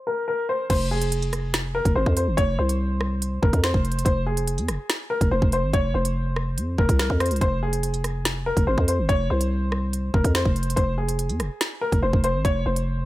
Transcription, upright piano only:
0.07 A#4
0.28 A#4
0.49 C5
0.70 C5
0.91 G#4
1.75 A#4
1.95 C5
2.17 C5
2.37 C#5
2.59 C5
3.42 A#4
3.64 C5
4.05 C5
4.26 G#4
5.10 A#4
5.31 C5
5.53 C5
5.74 C#5
5.95 C5
6.78 A#4
6.99 A#4
7.21 C5
7.41 C5
7.63 G#4
8.46 A#4
8.67 C5
8.88 C5
9.09 C#5
9.30 C5
10.14 A#4
10.35 C5
10.76 C5
10.98 G#4
11.81 A#4
12.03 C5
12.24 C5
12.45 C#5
12.66 C5

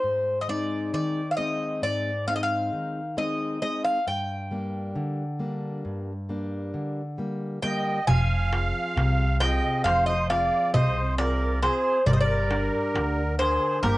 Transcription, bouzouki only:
Already playing: C5
0.41 D#5
0.49 D5
0.94 D5
1.31 F5
1.37 D#5
1.83 D5
2.28 F5
2.36 D#5
2.43 F5
3.18 D#5
3.62 D#5
3.84 F5
4.08 G5
7.62 G5
8.07 G#5
9.40 G5
9.84 F5
10.06 D#5
10.30 F5
10.74 D#5
11.18 D5
11.62 C5
12.06 D5
12.13 D#5
12.20 D5
13.39 C5
13.83 A#4

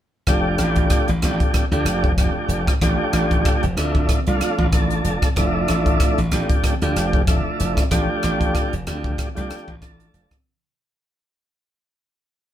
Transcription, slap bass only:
0.27 F1
0.59 A1
1.09 A1
1.23 A1
1.54 muted slap bass stroke
1.71 D2
1.85 F1
2.48 F1
2.82 A1
3.13 A1
3.63 F1
3.77 D2
4.09 muted slap bass stroke
4.27 C2
4.41 muted slap bass stroke
4.59 A1
5.04 F1
5.36 F1
5.69 A1
6.18 A1
6.32 A1
6.64 muted slap bass stroke
6.82 D2
6.96 F1
7.46 muted slap bass stroke
7.60 F1
7.91 A1
8.24 A1
8.73 F1
8.87 D2
9.37 C2
9.68 A1
10.14 F1

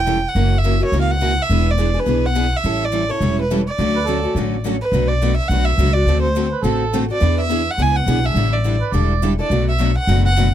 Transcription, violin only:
Already playing: G5
0.29 F#5
0.58 E5
0.85 C#5
1.02 F5
1.11 F#5
1.42 E5
1.71 D5
2.00 B4
2.26 F#5
2.57 E5
2.85 D5
3.11 C#5
3.42 B4
3.67 D5
4.82 B4
5.08 D5
5.37 E5
5.48 F#5
5.65 E5
5.93 D5
6.22 C5
7.13 D5
7.41 E5
7.71 F#5
7.82 G#5
7.97 F#5
8.26 E5
8.53 D5
9.40 D5
9.69 E5
9.99 F#5
10.26 F#5

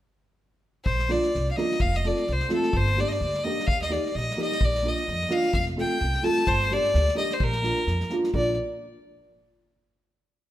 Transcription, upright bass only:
0.87 A#1
1.35 C2
1.82 F1
2.28 C2
2.74 G1
3.21 D2
3.68 D#2
4.15 A#1
4.61 A#1
5.08 F2
5.54 F1
6.01 C2
6.48 G1
6.94 D2
7.41 A#1
7.87 F2
8.34 A#1

